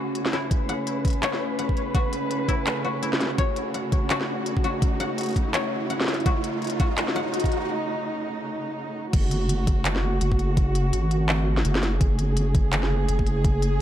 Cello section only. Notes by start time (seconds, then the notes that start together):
Already playing: C#3 A3 F#4
0.51 B4
3.38 F#4
6.26 D#4
9.13 C#3 A3 F#4
12.01 G#4